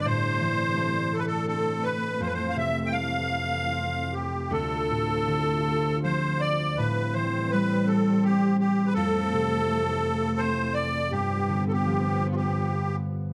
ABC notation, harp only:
X:1
M:3/4
L:1/8
Q:1/4=82
K:Flyd
V:1 name="Harp" clef=bass
A,, E, A,2 C2 | F,, C, A,2 C2 | D,, A,, D,2 F,2 | A,, E, G,2 C2 |
F,, C, A,2 C2 | G,, D, F,2 B,2 |]